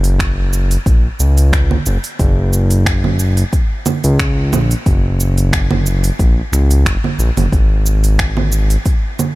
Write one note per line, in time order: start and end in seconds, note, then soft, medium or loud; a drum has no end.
0.00 0.77 F#1 loud
0.00 open hi-hat medium
0.04 shaker soft
0.19 finger snap medium
0.19 kick medium
0.19 open hi-hat soft
0.19 shaker soft
0.53 shaker medium
0.71 open hi-hat medium
0.71 shaker soft
0.86 1.08 A#1 medium
0.86 kick loud
0.86 open hi-hat soft
0.86 shaker soft
1.20 1.77 C#2 medium
1.20 shaker medium
1.37 open hi-hat medium
1.37 shaker soft
1.53 finger snap medium
1.53 kick loud
1.53 open hi-hat soft
1.53 shaker soft
1.71 low conga medium
1.86 1.97 F#1 medium
1.86 shaker medium
2.04 open hi-hat medium
2.04 shaker soft
2.19 3.44 F#1 loud
2.19 kick loud
2.19 open hi-hat soft
2.19 shaker soft
2.53 shaker medium
2.71 open hi-hat medium
2.71 shaker soft
2.86 finger snap loud
2.86 kick loud
2.86 open hi-hat soft
2.86 shaker soft
3.04 low conga medium
3.19 shaker medium
3.37 open hi-hat medium
3.37 shaker soft
3.53 kick loud
3.53 open hi-hat soft
3.53 shaker soft
3.86 low conga medium
3.86 shaker medium
4.04 4.54 C#2 loud
4.04 open hi-hat medium
4.04 shaker soft
4.19 finger snap loud
4.19 kick loud
4.19 open hi-hat soft
4.19 shaker soft
4.52 4.75 A#1 medium
4.52 low conga medium
4.52 shaker medium
4.71 open hi-hat medium
4.71 shaker soft
4.86 6.10 F#1 loud
4.86 kick loud
4.86 open hi-hat soft
4.86 shaker soft
5.20 shaker medium
5.38 open hi-hat medium
5.38 shaker soft
5.53 finger snap loud
5.53 kick loud
5.53 open hi-hat soft
5.53 shaker soft
5.71 low conga medium
5.86 shaker medium
6.04 open hi-hat medium
6.04 shaker soft
6.19 6.41 A#1 medium
6.19 kick loud
6.19 open hi-hat soft
6.19 shaker soft
6.52 6.85 C#2 medium
6.52 finger snap soft
6.52 shaker medium
6.71 open hi-hat medium
6.71 shaker soft
6.86 6.97 F#1 loud
6.86 finger snap loud
6.86 kick loud
6.86 open hi-hat soft
6.86 shaker soft
7.04 low conga medium
7.19 7.30 A#1 loud
7.19 shaker medium
7.37 7.47 F#1 medium
7.37 open hi-hat medium
7.37 low conga medium
7.37 shaker soft
7.52 8.77 G#1 loud
7.52 kick loud
7.52 open hi-hat soft
7.52 shaker soft
7.86 shaker medium
8.04 open hi-hat medium
8.04 shaker soft
8.19 finger snap loud
8.19 kick loud
8.19 open hi-hat soft
8.19 shaker soft
8.37 low conga medium
8.52 shaker medium
8.70 open hi-hat medium
8.70 shaker soft
8.86 kick loud
8.86 open hi-hat soft
8.86 shaker soft
9.19 low conga medium
9.19 shaker medium